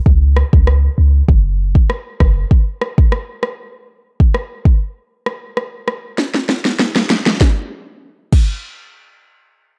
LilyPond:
<<
  \new Staff \with { instrumentName = "808-style bass" } { \clef bass \time 4/4 \key cis \dorian \tempo 4 = 98 cis,8. cis,8. cis,8 fis,,4 r8 fis,,8 | r1 | r1 | r1 | }
  \new DrumStaff \with { instrumentName = "Drums" } \drummode { \time 4/4 bd8 ss16 bd16 ss4 bd8. bd16 ss8 <bd ss>8 | bd8 ss16 bd16 ss8 ss8 r8. bd16 ss8 bd8 | r8 ss8 ss8 ss8 sn16 sn16 sn16 sn16 sn16 sn16 sn16 sn16 | <bd sn>4 r8 <cymc bd>8 r4 r4 | }
>>